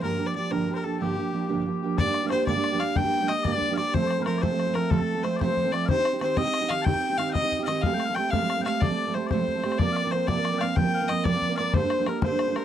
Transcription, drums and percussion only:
1.98 bodhran medium
2.14 bodhran medium
2.30 bodhran medium
2.47 bodhran medium
2.64 bodhran medium
2.80 bodhran medium
2.96 bodhran medium
3.04 bodhran soft
3.29 bodhran medium
3.45 bodhran medium
3.61 bodhran soft
3.78 bodhran medium
3.94 bodhran medium
4.11 bodhran medium
4.26 bodhran medium
4.43 bodhran medium
4.60 bodhran medium
4.75 bodhran medium
4.91 bodhran medium
5.00 bodhran soft
5.25 bodhran medium
5.41 bodhran medium
5.57 bodhran soft
5.74 bodhran medium
5.89 bodhran medium
6.05 bodhran medium
6.21 bodhran medium
6.37 bodhran medium
6.54 bodhran medium
6.70 bodhran medium
6.86 bodhran medium
6.94 bodhran soft
7.19 bodhran medium
7.35 bodhran medium
7.52 bodhran soft
7.68 bodhran medium
7.83 bodhran medium
8.00 bodhran medium
8.16 bodhran medium
8.33 bodhran medium
8.50 bodhran medium
8.66 bodhran medium
8.82 bodhran medium
8.90 bodhran soft
9.14 bodhran medium
9.31 bodhran medium
9.48 bodhran soft
9.64 bodhran medium
9.72 bodhran medium
9.79 bodhran medium
9.96 bodhran medium
10.12 bodhran medium
10.28 bodhran medium
10.45 bodhran medium
10.61 bodhran medium
10.77 bodhran medium
10.85 bodhran soft
11.09 bodhran medium
11.25 bodhran medium
11.42 bodhran soft
11.58 bodhran medium
11.74 bodhran medium
11.90 bodhran medium
12.06 bodhran medium
12.22 bodhran loud
12.39 bodhran medium
12.56 bodhran medium

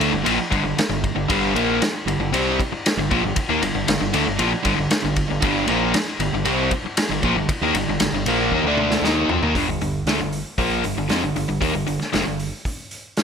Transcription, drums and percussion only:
0.01 ride medium
0.26 ride medium
0.52 kick medium
0.52 ride medium
0.78 snare loud
0.78 ride medium
1.04 kick medium
1.04 ride medium
1.30 kick loud
1.30 ride medium
1.56 ride medium
1.82 snare loud
1.82 ride medium
2.08 ride medium
2.34 ride medium
2.60 kick medium
2.60 ride medium
2.86 snare loud
2.86 ride loud
3.11 kick medium
3.11 ride medium
3.36 kick loud
3.36 ride medium
3.62 ride medium
3.88 snare loud
3.88 ride loud
4.14 ride medium
4.39 ride medium
4.65 kick medium
4.65 ride medium
4.91 snare loud
4.91 ride loud
5.16 kick medium
5.16 ride medium
5.42 kick loud
5.42 ride medium
5.68 ride medium
5.94 snare loud
5.94 ride medium
6.20 ride medium
6.45 ride medium
6.71 kick medium
6.71 ride medium
6.97 snare loud
6.97 ride loud
7.23 kick medium
7.23 ride medium
7.49 kick loud
7.49 ride medium
7.75 ride medium
8.00 snare loud
8.00 ride medium
8.26 ride medium
8.52 kick soft
8.77 mid tom medium
8.91 snare medium
9.04 snare medium
9.29 floor tom medium
9.42 floor tom medium
9.55 kick medium
9.55 open hi-hat medium
9.81 open hi-hat soft
10.07 snare medium
10.07 open hi-hat medium
10.33 open hi-hat soft
10.58 kick medium
10.58 open hi-hat soft
10.84 open hi-hat soft
11.09 snare loud
11.09 open hi-hat medium
11.36 open hi-hat soft
11.62 kick loud
11.62 open hi-hat medium
11.88 open hi-hat medium
12.01 snare soft
12.13 snare loud
12.13 open hi-hat medium
12.40 open hi-hat soft
12.65 kick medium
12.65 open hi-hat medium
12.91 open hi-hat soft
13.17 snare loud
13.17 open hi-hat medium

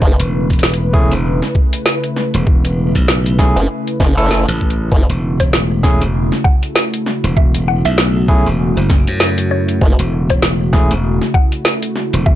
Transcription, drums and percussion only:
0.02 kick loud
0.20 closed hi-hat soft
0.50 kick medium
0.50 closed hi-hat soft
0.53 closed hi-hat soft
0.59 closed hi-hat soft
0.63 snare loud
0.63 closed hi-hat soft
0.69 closed hi-hat soft
0.73 closed hi-hat medium
0.94 kick loud
1.11 closed hi-hat medium
1.42 snare soft
1.55 kick loud
1.73 closed hi-hat medium
1.86 snare loud
2.04 closed hi-hat soft
2.16 snare soft
2.34 closed hi-hat medium
2.47 kick loud
2.65 closed hi-hat medium
2.95 kick medium
2.95 closed hi-hat medium
3.08 snare loud
3.26 closed hi-hat soft
3.39 kick loud
3.39 snare medium
3.57 closed hi-hat medium
3.87 closed hi-hat soft
4.00 kick loud
4.00 snare medium
4.18 closed hi-hat medium
4.31 snare loud
4.49 closed hi-hat medium
4.61 kick medium
4.70 closed hi-hat medium
4.92 kick loud
5.10 closed hi-hat medium
5.40 kick medium
5.40 closed hi-hat medium
5.53 snare loud
5.84 kick loud
5.84 snare medium
6.01 closed hi-hat medium
6.32 snare soft
6.45 kick loud
6.63 closed hi-hat medium
6.76 snare loud
6.94 closed hi-hat medium
7.06 snare soft
7.24 closed hi-hat medium
7.37 kick loud
7.55 closed hi-hat medium
7.85 closed hi-hat medium
7.98 snare loud
8.28 kick loud
8.90 kick loud
8.90 snare medium
9.07 closed hi-hat medium
9.20 snare loud
9.38 closed hi-hat medium
9.68 closed hi-hat medium
9.81 kick loud
9.99 closed hi-hat soft
10.30 kick medium
10.30 closed hi-hat medium
10.42 snare loud
10.73 kick loud
10.73 snare medium
10.91 closed hi-hat medium
11.21 snare soft
11.34 kick loud
11.52 closed hi-hat medium
11.65 snare loud
11.82 closed hi-hat medium
11.96 snare soft
12.13 closed hi-hat medium
12.26 kick loud

